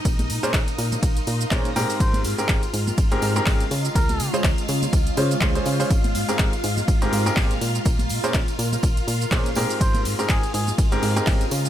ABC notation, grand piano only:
X:1
M:4/4
L:1/16
Q:"Swing 16ths" 1/4=123
K:Ab
V:1 name="Grand piano"
z3 [B,,DABc] z8 [B,,DABc] z [A,,CGAB]2- | [A,,CGAB]3 [A,,CGAB]2 z4 [A,,CGAB]2 [A,,CGAB] [D,CGAB] z3 | z3 [D,DFAc] z6 [D,DFAc] z [D,DFAc] [D,DFAc]2 [DFAc] | z3 [A,,CGAB]2 z4 [A,,CGAB]2 [A,,CGAB] [B,,CGAB] z3 |
z3 [B,,DABc] z8 [B,,DABc] z [A,,CGAB]2- | [A,,CGAB]3 [A,,CGAB]2 z4 [A,,CGAB]2 [A,,CGAB] D, z3 |]